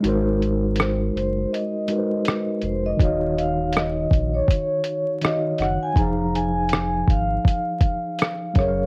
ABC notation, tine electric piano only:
X:1
M:4/4
L:1/8
Q:"Swing 16ths" 1/4=81
K:Fphr
V:1 name="Tine electric piano"
[A,EGBc]4- [A,EGBc] [A,EGB_c=c]3 | [E,EGdf]6 [E,EGdf]2 | [F,EAcf]6- [F,EAcf] [G,DAB_f=f] |]